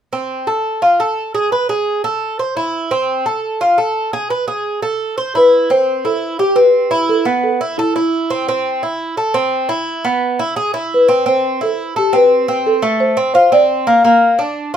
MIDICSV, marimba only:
0, 0, Header, 1, 2, 480
1, 0, Start_track
1, 0, Key_signature, 0, "minor"
1, 0, Tempo, 348028
1, 168, Time_signature, 4, 2, 24, 8
1, 7849, Key_signature, 0, "minor"
1, 20368, End_track
2, 0, Start_track
2, 0, Title_t, "Marimba"
2, 0, Program_c, 0, 12
2, 7409, Note_on_c, 0, 71, 84
2, 7876, Note_on_c, 0, 72, 94
2, 7883, Note_off_c, 0, 71, 0
2, 8344, Note_on_c, 0, 69, 70
2, 8357, Note_off_c, 0, 72, 0
2, 8816, Note_on_c, 0, 67, 73
2, 8831, Note_off_c, 0, 69, 0
2, 9043, Note_on_c, 0, 71, 87
2, 9060, Note_off_c, 0, 67, 0
2, 9782, Note_on_c, 0, 69, 81
2, 9788, Note_off_c, 0, 71, 0
2, 10223, Note_off_c, 0, 69, 0
2, 10253, Note_on_c, 0, 69, 69
2, 10730, Note_on_c, 0, 64, 71
2, 10746, Note_off_c, 0, 69, 0
2, 10953, Note_off_c, 0, 64, 0
2, 10987, Note_on_c, 0, 64, 63
2, 11425, Note_off_c, 0, 64, 0
2, 15093, Note_on_c, 0, 71, 74
2, 15564, Note_on_c, 0, 72, 78
2, 15565, Note_off_c, 0, 71, 0
2, 15994, Note_off_c, 0, 72, 0
2, 16038, Note_on_c, 0, 69, 70
2, 16518, Note_off_c, 0, 69, 0
2, 16528, Note_on_c, 0, 67, 69
2, 16756, Note_off_c, 0, 67, 0
2, 16769, Note_on_c, 0, 71, 78
2, 17468, Note_on_c, 0, 69, 82
2, 17490, Note_off_c, 0, 71, 0
2, 17906, Note_off_c, 0, 69, 0
2, 17933, Note_on_c, 0, 72, 80
2, 18383, Note_off_c, 0, 72, 0
2, 18399, Note_on_c, 0, 72, 90
2, 18652, Note_off_c, 0, 72, 0
2, 18658, Note_on_c, 0, 74, 93
2, 19100, Note_off_c, 0, 74, 0
2, 20368, End_track
0, 0, End_of_file